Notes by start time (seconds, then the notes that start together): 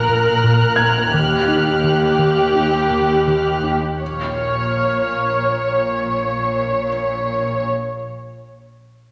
Already playing: A#1 A#2 A#4 F6 F#6
0.09 A#2
0.44 A#2
0.76 A#3 G#6
1.13 D#2 D#3 G4
1.48 D#4
1.84 D#3
2.19 D#3
2.56 D#4
2.91 D#3
3.27 D#3
3.64 D#4
4.01 A#1 A#2 C#5 C#6 F6